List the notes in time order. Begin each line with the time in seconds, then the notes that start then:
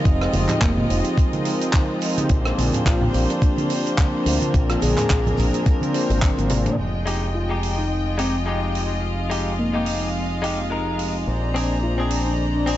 Already playing: G#3 F4 D#5
0.05 F1 F3 G#3 C4 D#4 G4, kick, closed hi-hat, shaker
0.21 cross-stick
0.33 F1, open hi-hat, high conga, shaker
0.48 F3 G#3 C4 D#4 G4, clap, closed hi-hat, low conga, shaker
0.61 F1 A#3, kick, cross-stick, clap, closed hi-hat, shaker
0.77 A#3, high conga, low conga
0.89 F1, open hi-hat, shaker
1.04 closed hi-hat, shaker
1.16 F3 G#3 C4 D#4 A#4, kick, closed hi-hat, shaker
1.33 closed hi-hat, high conga
1.45 open hi-hat, shaker
1.61 closed hi-hat, shaker
1.73 kick, clap, closed hi-hat, high conga, shaker
2.01 F3 G#3 C4 D#4 G4, open hi-hat, shaker
2.18 closed hi-hat, high conga, shaker
2.29 A#1 F3 A#3 C4 D4 G#4 C5, kick, closed hi-hat, shaker
2.45 cross-stick
2.58 A#1, open hi-hat, high conga, shaker
2.73 F3 A#3 C4 D4 G4, closed hi-hat, low conga, shaker
2.86 A#1 F4, kick, cross-stick, clap, closed hi-hat, shaker
3.01 high conga, low conga
3.14 A#1, open hi-hat, shaker
3.30 D4, closed hi-hat, shaker
3.41 kick, closed hi-hat, shaker
3.58 D4, closed hi-hat, high conga
3.70 open hi-hat, shaker
3.85 F3 A#3 C4 D4 C5, closed hi-hat, shaker
3.98 kick, clap, closed hi-hat, high conga, shaker
4.26 D2, open hi-hat, shaker
4.42 closed hi-hat, high conga, shaker
4.54 A#1 F3 A#3 C4 D4 G#4 A#4, kick, closed hi-hat, shaker
4.69 F4, cross-stick, closed hi-hat
4.82 A#1 G#4, open hi-hat, high conga, shaker
4.97 F3 A#3 C4 D4 G#4, clap, closed hi-hat, low conga, shaker
5.10 A#1, kick, cross-stick, clap, closed hi-hat, shaker
5.26 closed hi-hat, high conga, low conga
5.38 A#1, open hi-hat, low conga, shaker
5.54 closed hi-hat, shaker
5.65 F3 A#3 C4 D4 C5, kick, closed hi-hat, shaker
5.81 closed hi-hat, high conga
5.94 open hi-hat, shaker
6.10 G#1, open hi-hat, shaker
6.22 kick, clap, closed hi-hat, high conga, shaker
6.38 G#1, closed hi-hat, high tom
6.50 F3 A#3 C4 D4 G#4, open hi-hat, mid tom, shaker
6.66 A#2, closed hi-hat, mid tom, high conga, shaker
6.78 F1 F3 G#3 C4 D#4 F4 G4 D#5 G5
7.06 G#3 D#4 G4, open hi-hat
7.35 F4
7.49 G#3 D#4 G4
7.63 open hi-hat
7.78 D#4
8.18 G#3 C4 D#4 G4, open hi-hat
8.46 G#3 D#4 G4
8.75 open hi-hat
9.03 F5
9.30 G#3 D#4 G4, open hi-hat
9.59 A#3
9.73 G#3 A#3 D#4 G4
9.86 open hi-hat
10.42 G#3 D#4 G4, open hi-hat
10.70 G#3 D#4 A#4
10.99 open hi-hat
11.26 A#1 F3 A#3 C4 D4 G#4 C5 D5 A#5
11.54 C4 D4 G#4, open hi-hat
11.83 F4
11.98 C4 D4 G#4
12.10 open hi-hat
12.27 D4
12.55 D4
12.66 C4 D4 G#4, open hi-hat